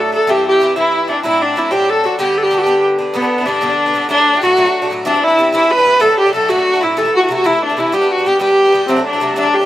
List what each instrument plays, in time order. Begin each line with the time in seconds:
Already playing: bouzouki A2 F#3 A3 D4
0.00 fiddle A4, viola A4
0.12 bouzouki F#3 A3 D4, fiddle A4, viola A4
0.27 bouzouki G2 E3 C4 E4, fiddle G4, viola G4
0.48 fiddle G4, viola G4
0.60 bouzouki G2 E3 C4 E4
0.76 bouzouki G2 E3 C4 E4, fiddle E4, viola E4
1.08 bouzouki E3 C4 E4, fiddle D4, viola D4
1.23 bouzouki A2 F#3 C4 D4, fiddle E4, viola E4
1.41 fiddle D4, viola D4
1.56 bouzouki A2 F#3 C4 D4, fiddle E4, viola E4
1.71 bouzouki A2 F#3 C4 D4, fiddle G4, viola G4
1.89 fiddle A4, viola A4
2.04 bouzouki F#3 C4 D4, viola F#4
2.19 bouzouki G2 D3 B3 D4, fiddle G4, viola G4
2.38 fiddle G4, viola A4
2.43 viola G4
2.51 bouzouki G2 D3 B3 D4
2.58 viola F#4 G4, fiddle G4
2.66 bouzouki G2 D3 B3 D4
2.98 bouzouki D3 B3 D4
3.14 bouzouki G2 D3 B3 D4, fiddle B3, viola B3
3.22 bouzouki D3 B3 D4
3.38 bouzouki D3 B3 D4, fiddle E4
3.46 bouzouki G2 D3 B3 D4, viola D4, fiddle D4
3.61 bouzouki G2 D3 B3 D4
3.69 bouzouki D3 B3 D4
3.86 bouzouki D3 B3 D4
3.94 bouzouki G2 D3 B3 D4
4.09 bouzouki A2 F#3 A3 D4, fiddle D4, viola D4
4.18 bouzouki F#3 A3 D4
4.33 bouzouki F#3 A3 D4, fiddle G4
4.42 bouzouki A2 F#3 A3 D4, viola F#4, fiddle F#4
4.57 bouzouki A2 F#3 A3 D4
4.66 bouzouki F#3 A3 D4
4.82 bouzouki F#3 A3 D4
4.90 bouzouki A2 F#3 A3 D4
5.05 bouzouki G2 E3 C4 D4, fiddle D4, viola D4
5.14 bouzouki E3 C4 D4
5.23 fiddle E4, viola E4
5.30 bouzouki E3 C4 D4
5.38 bouzouki G2 E3 C4 D4
5.53 bouzouki G2 E3 C4 D4, fiddle E4, viola E4
5.61 bouzouki E3 C4 D4
5.70 fiddle B4, viola B4
5.78 bouzouki E3 C4 D4
5.84 bouzouki G2 E3 C4 D4
6.00 bouzouki A2 F#3 A3 D4, fiddle A4, viola A4
6.09 bouzouki F#3 A3 D4
6.18 fiddle G4, viola G4
6.26 bouzouki F#3 A3 D4
6.33 bouzouki A2 F#3 A3 D4, fiddle A4, viola A4
6.48 bouzouki A2 F#3 A3 D4, fiddle F#4, viola F#4
6.57 bouzouki F#3 A3 D4
6.73 bouzouki F#3 A3 D4
6.81 bouzouki A2 F#3 A3 D4, fiddle E4, viola E4
6.96 bouzouki C3 E3 A3 E4, fiddle A4, viola A4
7.05 bouzouki E3 A3 E4
7.14 fiddle F#4, viola F#4
7.21 bouzouki E3 A3 E4, viola F#4
7.28 bouzouki C3 E3 A3 E4
7.35 fiddle F#4, viola F#4
7.44 bouzouki C3 E3 A3 E4, fiddle E4, viola E4
7.53 bouzouki A3 E4
7.62 fiddle D4, viola D4
7.70 bouzouki E3 A3 E4
7.77 bouzouki C3 E3 A3 E4, fiddle E4, viola E4
7.92 bouzouki G2 G3 B3 D4, fiddle G4, viola G4
8.01 bouzouki G3 B3 D4
8.12 fiddle F#4, viola F#4
8.18 bouzouki G3 B3 D4
8.25 bouzouki G2 G3 B3 D4, fiddle G4, viola G4
8.40 bouzouki G2 G3 B3 D4, fiddle G4, viola G4
8.49 bouzouki G3 B3 D4
8.65 bouzouki G3 B3 D4
8.72 bouzouki G2 G3 B3 D4
8.88 bouzouki C3 F#3 A3 D4, viola C4, fiddle C4
8.96 bouzouki F#3 A3 D4
9.06 fiddle D4, viola D4
9.13 bouzouki F#3 A3 D4
9.20 bouzouki C3 F#3 A3 D4
9.36 bouzouki C3 F#3 A3 D4, viola D4, fiddle D4
9.45 bouzouki F#3 A3 D4
9.54 viola G4, fiddle G4
9.61 bouzouki D4